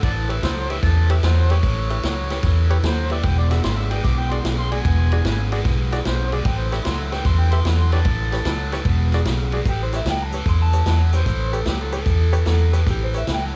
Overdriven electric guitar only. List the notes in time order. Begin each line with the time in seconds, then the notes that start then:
0.03 A2 E3
0.42 A2 F#3
0.70 A2 E3
0.83 A2 E3
1.24 A2 F#3
1.50 A2 E3
1.64 A2 E3
2.04 A2 F#3
2.31 A2 E3
2.44 A2 E3
2.84 A2 F#3
3.11 A2 E3
3.25 E2 B2
3.65 E2 C#3
3.91 E2 B2
4.05 E2 B2
4.44 E2 C#3
4.72 E2 B2
4.86 E2 B2
5.26 E2 C#3
5.53 E2 B2
5.66 E2 B2
6.06 E2 C#3
6.33 E2 B2
6.46 A2 E3
6.86 A2 F#3
7.12 A2 E3
7.26 A2 E3
7.66 A2 F#3
7.92 A2 E3
8.05 A2 E3
8.46 A2 F#3
8.73 A2 E3
8.86 E2 B2
9.27 E2 C#3
9.54 E2 B2
9.68 A2 E3
10.07 A2 F#3
10.34 A2 E3
10.47 A2 E3
10.87 A2 F#3
11.13 A2 E3
11.26 A2 E3
11.66 A2 F#3
11.94 A2 E3
12.07 A2 E3
12.47 A2 F#3
12.73 A2 E3
12.86 A2 E3
13.28 A2 F#3